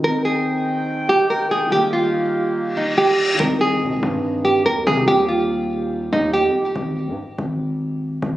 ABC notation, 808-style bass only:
X:1
M:4/4
L:1/16
Q:1/4=143
K:Cm
V:1 name="808-style bass" clef=bass
z16 | z16 | C,,4 C, C,, G,,6 E,,2 C,2 | E,,8- E,,2 E,,3 F,, z2 |
A,,,3 A,, z2 A,,,8 A,,,2 |]